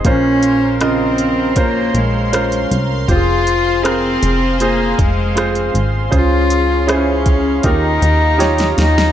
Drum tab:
HH |x-x-x-x-x-x-xxx-|x-x-x-x-x-x-xxx-|x-x-x-x-x-x-xxx-|
SD |----r-------r---|----r-------r---|----r-------oooo|
BD |o-------o-------|o---------o-----|o-----o-o-------|